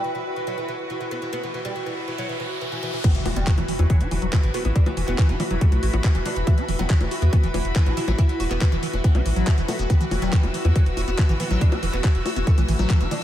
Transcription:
Already playing: E4 F#4 B4 B5, riser
0.04 E3
0.15 E3
0.36 E3
0.47 F#3
0.58 E3
0.68 E3
0.90 E3
1.01 E3
1.11 B3
1.22 E3
1.33 B3
1.43 E3
1.54 E3
1.65 G3
1.76 E3
1.86 E3
2.08 E3
2.18 F#3
2.29 E3
2.40 E3
2.61 E3
2.72 E3
2.83 E3
2.93 E3
3.04 E3 B3 E4 F#4, kick, closed hi-hat, crash, impact, high bongo
3.15 E3, closed hi-hat
3.26 E1 E3 F#4, open hi-hat, high bongo
3.34 E1 G3 B3 B4, closed hi-hat
3.47 E3 B5, kick, clap, closed hi-hat
3.58 E1 E3, closed hi-hat, high bongo
3.68 E3, open hi-hat
3.79 E2 E3, closed hi-hat, high bongo
3.90 E3 F#3, kick, closed hi-hat
4.01 E1 E3 E4, closed hi-hat
4.11 E1 E3, open hi-hat, high bongo
4.22 E1 F#3, closed hi-hat
4.33 E3, kick, clap, closed hi-hat, high bongo
4.43 A1 E3, closed hi-hat
4.54 B3 F#4, open hi-hat
4.65 A1 E3 B3, closed hi-hat, high bongo
4.76 E3 D4, kick, closed hi-hat
4.86 E3, closed hi-hat, high bongo
4.97 E1 E3, open hi-hat
5.08 E1 B3, clap, closed hi-hat
5.18 E3, kick, clap, closed hi-hat, high bongo
5.29 E1 E3 E4, closed hi-hat
5.40 E3, open hi-hat, high bongo
5.51 E1 E3 F#3, closed hi-hat
5.61 E3 A3, kick, closed hi-hat
5.72 B1 E3, closed hi-hat, high bongo
5.83 A1 E3 F#4, open hi-hat
5.93 A1 B3, closed hi-hat, high bongo
6.04 E3, kick, clap, closed hi-hat
6.15 E1 E3, closed hi-hat
6.26 E3 D4, open hi-hat, high bongo
6.36 E1 E3, closed hi-hat
6.47 E3 E4, kick, closed hi-hat, high bongo
6.58 E3 E4, closed hi-hat
6.68 E1 E3, open hi-hat
6.79 E1 F#3 B3, closed hi-hat, high bongo
6.90 E3, kick, clap, closed hi-hat
7.01 E1 E3, closed hi-hat, high bongo
7.11 F#4, open hi-hat
7.22 E2 E3 B3, closed hi-hat
7.33 E3 B3, kick, closed hi-hat, high bongo
7.43 E1 E3, closed hi-hat
7.54 E1 E3, open hi-hat, high bongo
7.65 E1, closed hi-hat
7.76 E3, kick, clap, closed hi-hat
7.86 A1 E3 E4, closed hi-hat, high bongo
7.97 E3 E4, open hi-hat
8.08 A1 E3 F#3, closed hi-hat, high bongo
8.18 E3 E4, kick, closed hi-hat
8.29 E3, closed hi-hat
8.40 E1 E3 F#4, open hi-hat, high bongo
8.51 E1 B3, clap, closed hi-hat
8.61 E3, kick, clap, closed hi-hat, high bongo
8.72 E1 E3, closed hi-hat
8.83 E3, open hi-hat
8.93 E1 E3, closed hi-hat, high bongo
9.04 E3 B3, kick, closed hi-hat
9.15 B1 E3 E4, closed hi-hat, high bongo
9.26 A1 E3, open hi-hat
9.36 A1 F#3, closed hi-hat
9.47 E3, kick, clap, closed hi-hat, high bongo
9.58 E1 E3, closed hi-hat
9.68 A3 B3, open hi-hat, high bongo
9.79 E1 E3 B3, closed hi-hat
9.90 E3 B3, kick, closed hi-hat, high bongo
10.01 E3, closed hi-hat
10.11 E1 E3, open hi-hat, high bongo
10.22 E1 F#3 G3, closed hi-hat
10.33 E3 E6, kick, clap, closed hi-hat
10.43 E1 E3 E4, closed hi-hat, high bongo
10.54 E3, open hi-hat
10.65 E2 E3, closed hi-hat, high bongo
10.76 E3 F#3, kick, closed hi-hat
10.86 E1 E3, closed hi-hat
10.97 E1 E3 F#4, open hi-hat, high bongo
11.08 E1 B3, closed hi-hat
11.18 E3, kick, clap, closed hi-hat, high bongo
11.29 A1 E3, closed hi-hat
11.40 E3 B3, open hi-hat
11.51 A1 E3 F#3, closed hi-hat, high bongo
11.61 E3 D4, kick, closed hi-hat
11.72 E3 E4, closed hi-hat, high bongo
11.83 E1 E3, open hi-hat
11.93 E1 B3, clap, closed hi-hat
12.04 E3, kick, clap, closed hi-hat, high bongo
12.15 E1 E3, closed hi-hat
12.26 F#4, open hi-hat, high bongo
12.36 E1 E3 B3, closed hi-hat
12.47 E3 A3, kick, closed hi-hat
12.58 B1 E3, closed hi-hat, high bongo
12.68 A1 E3, open hi-hat
12.79 A1 F#3, closed hi-hat, high bongo
12.90 E3, kick, clap, closed hi-hat
13.01 E1 E3 E4, closed hi-hat
13.11 E3 D4, open hi-hat, high bongo

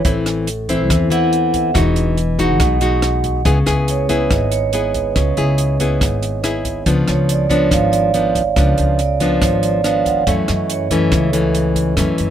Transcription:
0.05 A1 A2 E3 C4 E4 A4, kick, closed hi-hat
0.26 cross-stick, closed hi-hat
0.47 closed hi-hat
0.69 E3 C4 E4 C5, kick, closed hi-hat
0.90 E2 E3, kick, cross-stick, closed hi-hat
1.10 E3 C4 E4 F#5, closed hi-hat
1.33 closed hi-hat
1.54 E5, kick, closed hi-hat
1.74 E1 E3 G#3 D#4 F#4 D#5, kick, cross-stick, closed hi-hat
1.96 closed hi-hat
2.18 closed hi-hat
2.39 G#3 D#4 F#4 F#5, kick, closed hi-hat
2.60 B1 B2, kick, cross-stick, closed hi-hat
2.81 G#3 D#4 F#4, closed hi-hat
3.02 cross-stick, closed hi-hat
3.24 kick, closed hi-hat
3.45 C#2 C#3 B3 E4 G#4, kick, closed hi-hat
3.66 C#2 B3 E4 G#4 B4, cross-stick, closed hi-hat
3.88 C#5, closed hi-hat
4.09 B3 E4 G#4 B4, kick, closed hi-hat
4.31 G#1 G#2 D#5, kick, cross-stick, closed hi-hat
4.51 C#5, closed hi-hat
4.73 B3 E4 G#4, closed hi-hat
4.94 kick, closed hi-hat
5.16 C#2 C#3, kick, cross-stick, closed hi-hat
5.37 C#2 B3 E4 G#4, closed hi-hat
5.58 closed hi-hat
5.80 B3 E4 G#4, kick, closed hi-hat
6.01 G#1 G#2, kick, cross-stick, closed hi-hat
6.23 closed hi-hat
6.43 B3 E4 G#4, cross-stick, closed hi-hat
6.65 kick, closed hi-hat
6.86 C#2 C#3 F3 B3 D4, kick, closed hi-hat
7.08 C#2 C#5, cross-stick, closed hi-hat
7.29 D5, closed hi-hat
7.49 F3 B3 D4 C#5, kick, closed hi-hat
7.71 G#1 G#2 F5, kick, cross-stick, closed hi-hat
7.92 D5, closed hi-hat
8.14 F3 B3 D4, closed hi-hat
8.35 kick, closed hi-hat
8.56 C#2 C#3 F3 B3 D4, kick, cross-stick, closed hi-hat
8.78 C#2, closed hi-hat
8.99 D5, closed hi-hat
9.20 F3 B3 D4 C5, kick, closed hi-hat
9.41 G#1 G#2 C#5, kick, cross-stick, closed hi-hat
9.63 D5, closed hi-hat
9.84 F3 B3 D4 F5, cross-stick, closed hi-hat
10.06 F#5, kick, closed hi-hat
10.27 F#2 E3 A3 C#4 E5, kick, closed hi-hat
10.48 F#2 D#5, cross-stick, closed hi-hat
10.70 C#5, closed hi-hat
10.91 E3 A3 C#4 B4, kick, closed hi-hat
11.12 C#2 C#3 A4, kick, cross-stick, closed hi-hat
11.33 E3 A3 C#4, closed hi-hat
11.55 closed hi-hat
11.76 kick, closed hi-hat
11.97 F#2 E3 A3 C#4, kick, cross-stick, closed hi-hat
12.18 F#2, closed hi-hat

